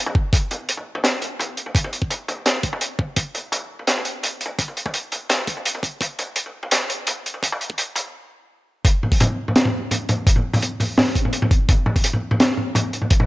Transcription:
0.06 mid tom
0.15 kick
0.33 kick, closed hi-hat, mid tom
0.51 closed hi-hat, mid tom
0.69 closed hi-hat
0.77 mid tom
0.95 mid tom
1.04 snare, closed hi-hat
1.22 closed hi-hat, mid tom
1.39 closed hi-hat, mid tom
1.57 closed hi-hat
1.66 mid tom
1.75 kick, closed hi-hat
1.84 mid tom
1.93 closed hi-hat
2.02 kick
2.10 closed hi-hat, mid tom
2.28 closed hi-hat, mid tom
2.46 snare, closed hi-hat
2.55 mid tom
2.63 kick, closed hi-hat
2.73 mid tom
2.81 closed hi-hat
2.99 kick, mid tom
3.16 kick, closed hi-hat
3.35 closed hi-hat, mid tom
3.52 closed hi-hat, mid tom
3.79 mid tom
3.87 snare, closed hi-hat
3.97 mid tom
4.05 closed hi-hat
4.23 closed hi-hat, mid tom
4.41 closed hi-hat
4.46 mid tom
4.59 kick, closed hi-hat
4.68 mid tom
4.77 closed hi-hat
4.86 kick, mid tom
4.94 closed hi-hat
5.12 closed hi-hat, mid tom
5.29 snare, closed hi-hat, mid tom
5.47 kick, closed hi-hat
5.57 mid tom
5.65 closed hi-hat
5.75 mid tom
5.83 kick, closed hi-hat
6.01 kick, closed hi-hat, mid tom
6.19 closed hi-hat, mid tom
6.36 closed hi-hat
6.46 mid tom
6.63 mid tom
6.71 snare, closed hi-hat
6.89 closed hi-hat, mid tom
7.07 closed hi-hat, mid tom
7.26 closed hi-hat
7.34 mid tom
7.43 kick, closed hi-hat
7.52 mid tom
7.61 closed hi-hat
7.70 kick
7.78 closed hi-hat, mid tom
7.96 closed hi-hat, mid tom
8.85 kick, closed hi-hat
9.03 mid tom
9.12 kick, open hi-hat
9.20 closed hi-hat, mid tom
9.48 mid tom
9.56 snare, closed hi-hat
9.65 mid tom
9.91 closed hi-hat, mid tom
10.09 closed hi-hat, mid tom
10.27 kick, closed hi-hat
10.36 mid tom
10.53 mid tom, open hi-hat
10.62 closed hi-hat
10.80 mid tom, open hi-hat
10.98 snare, mid tom, open hi-hat
11.15 kick, closed hi-hat
11.25 mid tom
11.33 closed hi-hat
11.42 mid tom
11.51 kick, closed hi-hat
11.69 kick, closed hi-hat, mid tom
11.86 mid tom
11.96 kick, open hi-hat
12.04 closed hi-hat
12.13 mid tom
12.31 mid tom
12.40 snare, closed hi-hat
12.57 mid tom
12.75 closed hi-hat, mid tom
12.93 closed hi-hat
13.02 mid tom
13.10 kick, closed hi-hat
13.20 mid tom

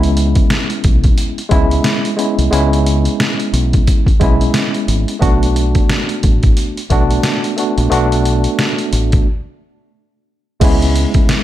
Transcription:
Already playing: C#2 G#3 B3 C#4 E4
0.03 closed hi-hat
0.17 closed hi-hat
0.35 kick, closed hi-hat
0.50 snare, closed hi-hat
0.70 closed hi-hat
0.84 B1, kick, closed hi-hat
1.04 kick, closed hi-hat
1.18 closed hi-hat
1.38 closed hi-hat
1.49 C#2 G#3 B3 C#4 E4, kick, closed hi-hat
1.71 closed hi-hat
1.84 snare, closed hi-hat
2.05 closed hi-hat
2.17 G#3 B3 C#4 E4, closed hi-hat
2.38 C2, closed hi-hat
2.50 C#2 G#3 B3 C#4 E4, closed hi-hat
2.73 closed hi-hat
2.86 closed hi-hat
3.05 closed hi-hat
3.20 snare, closed hi-hat
3.40 closed hi-hat
3.53 B1, closed hi-hat
3.73 kick, closed hi-hat
3.87 kick, closed hi-hat
4.07 kick, closed hi-hat
4.20 B1 G#3 B3 C#4 E4, kick, closed hi-hat
4.41 closed hi-hat
4.54 snare, closed hi-hat
4.74 closed hi-hat
4.88 G#1, closed hi-hat
5.08 closed hi-hat
5.19 B1 A3 B3 D4 F#4, kick, closed hi-hat
5.43 closed hi-hat
5.56 closed hi-hat
5.75 kick, closed hi-hat
5.90 snare, closed hi-hat
6.09 closed hi-hat
6.23 A1, kick, closed hi-hat
6.43 kick, closed hi-hat
6.57 closed hi-hat
6.77 closed hi-hat
6.90 B1 A3 B3 D4 F#4, kick, closed hi-hat
7.11 closed hi-hat
7.23 snare, closed hi-hat
7.44 closed hi-hat
7.56 A3 B3 D4 F#4, closed hi-hat
7.78 A#1, closed hi-hat
7.89 B1 A3 B3 D4 F#4, closed hi-hat
8.12 closed hi-hat
8.25 closed hi-hat
8.44 closed hi-hat
8.59 snare, closed hi-hat
8.79 closed hi-hat
8.93 A1, closed hi-hat
9.12 kick, closed hi-hat
10.60 C#2 G#3 B3 C#4 E4, kick, closed hi-hat, crash
10.82 closed hi-hat
10.96 closed hi-hat
11.14 kick, closed hi-hat
11.29 snare, closed hi-hat

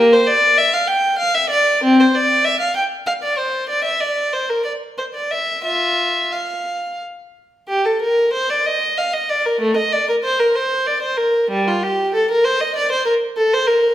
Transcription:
Already playing: A#3
0.13 C5
0.27 D5
0.58 E5
0.73 F5
0.87 G5
1.18 F5
1.34 E5
1.50 D5
1.84 C4
2.00 C5
2.15 D5
2.45 E5
2.60 F5
2.75 G5
3.07 F5
3.23 D5
3.37 C5
3.69 D5
3.84 E5
4.01 D5
4.33 C5
4.49 A#4
4.64 D5
4.98 C5
5.14 D5
5.31 E5
5.64 F4 E5
6.32 F5
7.68 G4
7.85 A4
8.02 A#4
8.33 C5
8.50 D5
8.66 D#5
8.97 F5
9.14 D#5
9.29 D5
9.45 A#4
9.61 A3
9.77 D#5
9.92 D5
10.09 A#4
10.23 C5
10.39 A#4
10.55 C5
10.87 D5
11.02 C5
11.17 A#4
11.50 G3
11.68 F4
11.83 G4
12.14 A4
12.31 A#4
12.45 C5
12.61 D#5
12.76 D5
12.92 C5
13.06 A#4
13.37 A4
13.53 C5
13.67 A#4

